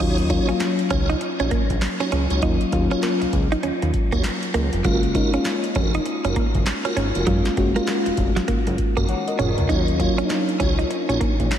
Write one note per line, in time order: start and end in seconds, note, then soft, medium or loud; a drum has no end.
0.00 0.39 D#2 loud
0.00 0.24 F#3 medium
0.00 0.24 A#3 medium
0.00 0.24 C#4 medium
0.00 0.10 D#4 medium
0.00 0.17 D#4 medium
0.00 0.24 F4 medium
0.00 0.17 F#4 medium
0.00 0.17 C#5 loud
0.00 kick loud
0.00 closed hi-hat medium
0.00 crash medium
0.18 closed hi-hat medium
0.29 0.44 F#3 medium
0.29 0.44 A#3 medium
0.29 0.44 C#4 medium
0.29 0.48 D#4 medium
0.29 0.44 F4 medium
0.29 0.48 F#4 medium
0.29 0.48 C#5 medium
0.29 muted clean electric guitar stroke soft
0.29 kick medium
0.29 closed hi-hat medium
0.48 1.38 F#3 medium
0.48 1.39 A#3 medium
0.48 0.55 C#4 medium
0.48 1.39 C#4 medium
0.48 1.39 F4 medium
0.48 closed hi-hat medium
0.60 muted clean electric guitar stroke soft
0.60 snare loud
0.60 clap medium
0.60 closed hi-hat medium
0.79 closed hi-hat medium
0.90 1.15 C#2 medium
0.90 1.01 C#4 medium
0.90 1.08 D#4 medium
0.90 1.08 F#4 medium
0.90 1.09 C#5 medium
0.90 kick loud
0.90 closed hi-hat medium
1.09 1.16 D#4 medium
1.09 closed hi-hat soft
1.21 muted clean electric guitar stroke soft
1.21 closed hi-hat medium
1.39 1.49 A#1 medium
1.39 1.46 C#4 medium
1.39 1.50 D#4 medium
1.39 1.51 F#4 medium
1.39 1.51 C#5 medium
1.39 closed hi-hat soft
1.51 1.62 A#3 medium
1.51 kick medium
1.51 closed hi-hat medium
1.70 1.79 A#1 medium
1.70 kick medium
1.70 closed hi-hat medium
1.82 muted clean electric guitar stroke soft
1.82 snare loud
1.82 clap medium
1.82 closed hi-hat medium
2.00 2.07 C#4 medium
2.00 2.11 D#4 medium
2.00 2.11 F#4 medium
2.00 2.11 C#5 medium
2.00 closed hi-hat medium
2.12 2.27 C#2 medium
2.12 2.23 C#4 medium
2.12 closed hi-hat medium
2.30 2.40 C#2 medium
2.30 2.41 D#4 medium
2.30 2.42 F#4 medium
2.30 2.42 C#5 medium
2.30 closed hi-hat medium
2.42 2.57 D#2 loud
2.42 2.66 F#3 medium
2.42 2.66 A#3 medium
2.42 2.67 C#4 medium
2.42 2.53 D#4 medium
2.42 2.67 F4 medium
2.42 kick loud
2.42 closed hi-hat medium
2.61 closed hi-hat medium
2.72 2.88 D#2 medium
2.72 2.86 F#3 medium
2.72 2.86 A#3 medium
2.72 2.87 C#4 medium
2.72 2.87 F4 loud
2.72 muted clean electric guitar stroke soft
2.72 kick medium
2.72 closed hi-hat medium
2.91 3.81 F#3 medium
2.91 3.81 A#3 medium
2.91 3.81 C#4 medium
2.91 2.98 C#4 medium
2.91 3.02 D#4 medium
2.91 3.81 F4 medium
2.91 3.02 F#4 medium
2.91 3.02 C#5 medium
2.91 closed hi-hat medium
3.03 3.14 A#3 medium
3.03 snare medium
3.03 clap medium
3.03 closed hi-hat medium
3.22 3.26 C#2 soft
3.22 muted clean electric guitar stroke soft
3.22 closed hi-hat medium
3.33 3.48 C#2 medium
3.33 kick medium
3.33 closed hi-hat medium
3.52 3.58 D#4 medium
3.52 closed hi-hat soft
3.63 3.71 D#2 soft
3.63 3.74 C#4 medium
3.63 closed hi-hat medium
3.82 3.92 D#2 medium
3.82 muted clean electric guitar stroke soft
3.82 closed hi-hat medium
3.94 kick medium
3.94 closed hi-hat medium
4.12 4.22 D#2 medium
4.12 4.19 A#3 medium
4.12 4.23 D#4 medium
4.12 4.23 F#4 medium
4.12 4.24 C#5 medium
4.12 kick medium
4.12 closed hi-hat medium
4.24 snare loud
4.24 clap medium
4.24 closed hi-hat medium
4.43 closed hi-hat medium
4.54 4.70 C#2 loud
4.54 4.65 A#3 medium
4.54 closed hi-hat medium
4.73 4.82 F1 medium
4.73 closed hi-hat soft
4.84 5.24 F#1 loud
4.84 4.95 F#3 medium
4.84 5.09 G#3 medium
4.84 5.09 A#3 medium
4.84 5.09 C#4 medium
4.84 5.02 F4 medium
4.84 5.09 F4 medium
4.84 5.02 F#4 medium
4.84 5.02 A#4 loud
4.84 kick loud
4.84 closed hi-hat medium
5.03 closed hi-hat medium
5.14 5.28 G#3 medium
5.14 5.29 A#3 medium
5.14 5.29 C#4 medium
5.14 5.29 D#4 medium
5.14 5.32 F4 medium
5.14 5.33 F#4 medium
5.14 5.33 A#4 medium
5.14 muted clean electric guitar stroke soft
5.14 kick medium
5.14 closed hi-hat medium
5.33 6.23 G#3 medium
5.33 6.23 A#3 medium
5.33 6.24 C#4 medium
5.33 5.40 C#4 medium
5.33 6.24 F4 medium
5.33 closed hi-hat medium
5.45 muted clean electric guitar stroke soft
5.45 snare loud
5.45 clap medium
5.45 closed hi-hat medium
5.64 closed hi-hat medium
5.75 6.00 F1 loud
5.75 5.86 C#4 medium
5.75 5.93 F4 medium
5.75 5.93 F#4 medium
5.75 5.93 A#4 medium
5.75 kick loud
5.75 closed hi-hat medium
5.94 6.01 D#4 medium
5.94 closed hi-hat medium
6.06 muted clean electric guitar stroke soft
6.06 closed hi-hat medium
6.24 6.34 F#1 medium
6.24 6.31 C#4 medium
6.24 6.35 F4 medium
6.24 6.35 F#4 medium
6.24 6.36 A#4 medium
6.24 closed hi-hat soft
6.36 6.47 A#3 medium
6.36 kick medium
6.36 closed hi-hat medium
6.55 6.64 F#1 medium
6.55 kick medium
6.55 closed hi-hat medium
6.66 muted clean electric guitar stroke soft
6.66 snare loud
6.66 clap medium
6.66 closed hi-hat medium
6.85 6.92 C#4 medium
6.85 6.96 F4 medium
6.85 6.96 F#4 medium
6.85 6.96 A#4 medium
6.85 closed hi-hat medium
6.97 7.12 G#1 medium
6.97 7.07 C#4 medium
6.97 closed hi-hat medium
7.15 7.25 F1 medium
7.15 7.26 F4 medium
7.15 7.26 F#4 medium
7.15 7.27 A#4 medium
7.15 closed hi-hat soft
7.26 7.42 F#1 medium
7.26 7.37 F#3 medium
7.26 7.51 G#3 medium
7.26 7.51 A#3 medium
7.26 7.51 C#4 medium
7.26 7.52 F4 medium
7.26 kick medium
7.26 closed hi-hat medium
7.45 snare medium
7.45 closed hi-hat medium
7.57 7.72 F#1 medium
7.57 7.71 G#3 medium
7.57 7.71 A#3 medium
7.57 7.71 C#4 medium
7.57 7.72 F#4 medium
7.57 muted clean electric guitar stroke soft
7.57 kick medium
7.57 closed hi-hat medium
7.75 8.66 G#3 medium
7.75 8.66 A#3 medium
7.75 7.83 A#3 medium
7.75 8.66 C#4 medium
7.75 7.87 F4 medium
7.75 8.66 F4 loud
7.75 7.87 F#4 medium
7.75 7.87 A#4 medium
7.75 closed hi-hat medium
7.87 7.98 G#3 medium
7.87 snare loud
7.87 clap medium
7.87 closed hi-hat medium
8.06 8.11 F1 soft
8.06 muted clean electric guitar stroke soft
8.06 closed hi-hat medium
8.17 8.33 F1 loud
8.17 kick medium
8.17 closed hi-hat medium
8.36 8.43 F#3 medium
8.36 snare medium
8.36 closed hi-hat medium
8.48 8.56 F#1 soft
8.48 8.59 A#3 medium
8.48 kick medium
8.48 closed hi-hat medium
8.67 8.77 F#1 medium
8.67 muted clean electric guitar stroke soft
8.67 closed hi-hat soft
8.78 kick medium
8.78 closed hi-hat medium
8.97 9.07 F#1 medium
8.97 9.03 A#3 medium
8.97 9.08 F4 medium
8.97 9.08 F#4 medium
8.97 9.08 A#4 medium
8.97 kick loud
8.97 closed hi-hat soft
9.09 9.27 C#5 medium
9.09 9.27 F#5 medium
9.09 closed hi-hat medium
9.09 high tom medium
9.28 9.39 A#4 medium
9.28 9.39 D#5 medium
9.28 closed hi-hat medium
9.38 9.54 F1 medium
9.38 9.49 C#4 medium
9.38 9.57 F4 medium
9.38 9.57 F#4 medium
9.38 9.57 G#4 medium
9.38 9.57 A#4 medium
9.38 9.57 C#5 medium
9.38 closed hi-hat medium
9.38 mid tom loud
9.58 9.67 C#2 medium
9.58 9.69 F4 medium
9.58 9.87 A#4 medium
9.58 closed hi-hat medium
9.58 floor tom medium
9.69 10.09 D#2 loud
9.69 9.94 F#3 medium
9.69 9.94 A#3 medium
9.69 9.94 C#4 medium
9.69 9.87 D#4 medium
9.69 9.80 D#4 medium
9.69 9.94 F4 medium
9.69 9.87 F#4 medium
9.69 9.87 C#5 loud
9.69 kick loud
9.69 closed hi-hat medium
9.88 closed hi-hat medium
9.99 10.13 F#3 medium
9.99 10.14 A#3 medium
9.99 10.14 C#4 medium
9.99 10.17 D#4 medium
9.99 10.14 F4 loud
9.99 10.17 F#4 medium
9.99 10.18 C#5 medium
9.99 muted clean electric guitar stroke soft
9.99 kick medium
9.99 closed hi-hat medium
10.18 11.08 F#3 medium
10.18 11.08 A#3 medium
10.18 10.25 C#4 medium
10.18 11.09 C#4 medium
10.18 10.24 D4 medium
10.18 closed hi-hat medium
10.26 11.12 D#4 medium
10.30 muted clean electric guitar stroke soft
10.30 snare loud
10.30 clap medium
10.30 closed hi-hat medium
10.49 closed hi-hat soft
10.60 10.85 C#2 medium
10.60 10.71 C#4 medium
10.60 10.78 D#4 medium
10.60 10.78 F#4 medium
10.60 10.78 C#5 medium
10.60 kick loud
10.60 closed hi-hat medium
10.79 10.85 D#4 medium
10.79 closed hi-hat medium
10.91 muted clean electric guitar stroke soft
10.91 closed hi-hat medium
11.09 11.19 A#1 medium
11.09 11.16 C#4 medium
11.09 11.20 D#4 medium
11.09 11.20 F#4 medium
11.09 11.20 C#5 medium
11.09 closed hi-hat medium
11.21 11.31 A#3 medium
11.21 kick medium
11.21 closed hi-hat medium
11.40 11.49 A#1 medium
11.40 kick medium
11.40 closed hi-hat medium
11.51 muted clean electric guitar stroke soft
11.51 snare loud
11.51 clap medium
11.51 closed hi-hat medium